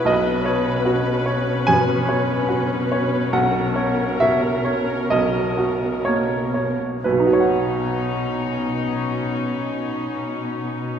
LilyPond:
<<
  \new Staff \with { instrumentName = "Grand piano" } { \time 4/4 \key b \major \tempo 4 = 65 << { dis''2 gis''2 | fis''4 e''4 dis''4 cis''8 r8 | <b,, b, dis' fis' b' cis'' fis''>1 | } \\ { b,,8 cis''8 fis'8 cis''8 fis,8 cis''8 fis'8 cis''8 | b,,8 cis''8 fis'8 cis''8 b,,8 fis'8 ais8 cis''8 | r1 | } >> }
  \new Staff \with { instrumentName = "Viola section" } { \time 4/4 \key b \major << { b'1 | ais'2.~ ais'8. r16 | dis'1 | } \\ { cis'1~ | cis'2.~ cis'8. r16 | cis'1 | } >> }
  \new Staff \with { instrumentName = "Cello section" } { \clef bass \time 4/4 \key b \major b,1~ | b,2.~ b,8. r16 | b,1 | }
>>